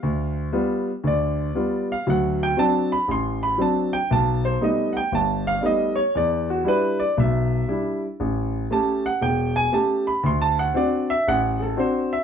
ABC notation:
X:1
M:4/4
L:1/8
Q:"Swing" 1/4=118
K:Dmix
V:1 name="Grand piano"
=f z3 d3 f | f g a b c' b a g | a c ^d [fg] a =f [=d^d] ^c | d F B d e3 z |
z2 a f g ^g a b | (3c' a f d e f [^GA] c e |]
V:2 name="Grand piano"
D,,2 [G,B,=F] z [D,,D,]2 [G,B,F] z | [D,,F,]2 [F,CD] z A,,,2 [F,CD] z | B,,,2 [G,A,B,^D] z G,,,2 [G,A,B,D] z | E,,2 [G,DE] z B,,,2 [G,DE] z |
A,,,2 [A,^CG] z E,,,2 [A,CG] z | D,,2 [CDF] z A,,,2 [CDF] z |]